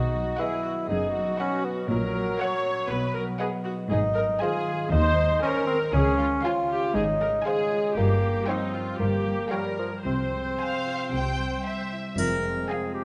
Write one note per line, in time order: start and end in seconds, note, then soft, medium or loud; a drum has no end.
0.00 0.28 B1 medium
0.00 0.29 B2 medium
0.00 1.92 B2 soft
0.00 0.38 D#4 medium
0.00 0.63 D#4 soft
0.00 0.38 F#4 soft
0.14 1.13 F#3 soft
0.38 0.88 B3 soft
0.38 0.88 E4 medium
0.38 0.64 G#4 soft
0.38 0.77 B4 soft
0.38 0.77 D#5 soft
0.38 0.76 F#5 soft
0.64 1.63 D#4 soft
0.64 0.72 F#4 soft
0.89 1.29 F#1 medium
0.89 1.29 F#2 medium
0.89 1.38 B3 soft
0.89 1.38 D#4 medium
0.89 1.14 G#4 soft
1.14 2.14 F#3 soft
1.14 1.88 F#4 soft
1.39 1.92 B3 soft
1.39 1.66 C#4 medium
1.39 1.77 B4 soft
1.39 1.77 D#5 soft
1.39 1.77 F#5 soft
1.65 1.88 B3 medium
1.65 1.92 D#4 soft
1.89 2.29 A#1 medium
1.89 2.29 A#2 medium
1.89 2.92 A#2 soft
1.89 3.13 F#3 medium
1.89 2.39 A#4 medium
2.15 3.14 F#3 soft
2.40 2.92 A#3 soft
2.40 2.90 C#5 medium
2.40 2.78 C#5 medium
2.40 2.77 F#5 medium
2.65 2.92 C#4 soft
2.90 3.30 B1 medium
2.90 3.93 B2 medium
2.90 3.30 B2 medium
2.90 3.15 B4 medium
3.15 3.93 F#3 soft
3.15 3.23 A#4 medium
3.40 3.93 B3 soft
3.40 3.48 G#4 medium
3.40 3.78 B4 medium
3.40 3.78 D#5 medium
3.40 3.78 F#5 soft
3.65 4.66 D#4 soft
3.65 3.73 F#4 medium
3.91 4.31 G#1 medium
3.91 4.31 G#2 medium
3.91 5.96 G#2 soft
3.91 4.38 D#4 medium
3.91 3.99 G#4 medium
4.16 5.17 G#3 soft
4.16 4.24 A#4 medium
4.41 4.92 D#3 soft
4.41 4.91 F4 medium
4.41 4.91 G#4 medium
4.41 4.79 C5 medium
4.41 4.79 D#5 medium
4.41 4.79 G#5 medium
4.67 5.67 D#4 soft
4.91 5.32 D#2 medium
4.91 5.42 D#3 soft
4.91 5.42 D#4 medium
4.91 5.41 C5 medium
5.18 6.18 G#3 soft
5.42 5.96 D#3 soft
5.42 5.66 C#4 medium
5.42 5.92 A#4 medium
5.42 5.81 C5 medium
5.42 5.81 D#5 medium
5.42 5.81 G#5 medium
5.67 5.79 C4 medium
5.67 5.96 D#4 soft
5.93 6.33 C#2 medium
5.93 6.33 C#3 medium
5.93 7.99 C#3 medium
5.93 6.43 C#4 medium
5.93 6.18 G#4 medium
6.18 7.19 G#3 soft
6.18 6.26 F4 medium
6.44 6.95 C#4 soft
6.44 6.52 F4 medium
6.44 6.96 F4 medium
6.44 6.82 C5 medium
6.44 6.82 F5 medium
6.44 6.83 G#5 medium
6.70 7.70 F4 soft
6.70 6.95 G4 medium
6.94 7.35 G#1 medium
6.94 7.35 G#2 medium
6.94 7.44 C#4 soft
6.94 7.45 D#4 medium
6.94 7.02 G#4 medium
7.21 7.99 G#3 soft
7.21 7.29 A#4 medium
7.45 7.96 G#3 medium
7.45 10.07 C#4 soft
7.45 7.96 G#4 medium
7.45 7.84 C5 medium
7.45 7.84 F5 medium
7.45 7.84 G#5 medium
7.71 8.73 F4 soft
7.96 8.37 G1 medium
7.96 8.98 G2 medium
7.96 8.37 G2 medium
7.96 8.47 A#3 medium
7.96 8.47 G4 medium
8.23 9.24 G3 soft
8.47 9.50 F3 soft
8.47 8.99 C4 medium
8.47 8.73 D#4 medium
8.47 8.86 C#5 medium
8.47 8.86 F5 soft
8.47 8.86 G5 soft
8.73 8.99 F4 soft
8.73 9.77 F4 soft
8.99 9.40 G1 medium
8.99 10.07 G2 soft
8.99 9.40 G2 medium
8.99 9.53 A#3 medium
8.99 9.51 G4 medium
9.25 10.08 G3 soft
9.51 11.15 F3 soft
9.51 9.78 G3 medium
9.51 10.04 A#4 soft
9.51 9.91 C#5 soft
9.51 9.92 F5 soft
9.51 9.92 G5 soft
9.78 9.91 F3 soft
9.78 10.84 F4 soft
10.05 10.48 C2 medium
10.05 11.11 C3 soft
10.05 10.48 C3 medium
10.05 11.63 C4 medium
10.05 11.88 C5 soft
10.32 11.15 G#3 soft
10.59 11.09 F5 soft
10.59 10.99 G#5 soft
10.85 11.14 F4 soft
11.12 11.54 C2 soft
11.12 12.20 C3 soft
11.12 11.54 C3 soft
11.12 11.65 G5 soft
11.38 12.20 G3 soft
11.65 13.04 C4 soft
11.65 12.17 E5 soft
11.65 12.05 G5 soft
11.92 12.20 E4 soft
12.17 12.59 F1 medium
12.17 13.04 F2 soft
12.17 12.59 F2 medium
12.17 13.04 G#3 soft
12.17 13.04 C4 soft
12.17 12.71 A#4 medium
12.17 triangle soft
12.35 13.04 C3 soft
12.52 13.04 G#3 soft
12.69 13.04 C4 soft
12.69 13.01 F4 soft
12.69 12.95 G#4 medium
12.69 13.04 F5 soft
12.69 13.04 G#5 soft
12.87 13.04 C5 soft
12.94 13.04 G4 medium